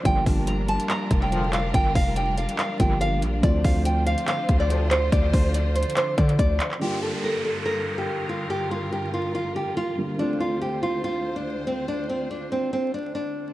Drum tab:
HH |x-----o-----x-----x--x--x-----x-----x-----x-----|x-----o-----x-----x--x--x-----x-----x-----x-----|x-----o-----x-----x--x--x-----x-----x-----x-----|x-----o-----x-----x-x-x-x-----x--x--x-----x-----|
CP |------------------------x-----------------x-----|------------------------x-----------------------|------------------------x-----------------x-----|------------------------x-----------------x--x--|
BD |o-----o-----------------------o-----------------|o-----o-----------------------o-----------------|o-----o-----------------------o-----------------|o-----o-----------------------o-----o-----------|

HH |------------------------------------------------|------------------------------------------------|------------------------------------------------|------------------------------------------------|
CP |------------------------------------------------|------------------------------------------------|------------------------------------------------|------------------------------------------------|
BD |------------------------------------------------|------------------------------------------------|------------------------------------------------|------------------------------------------------|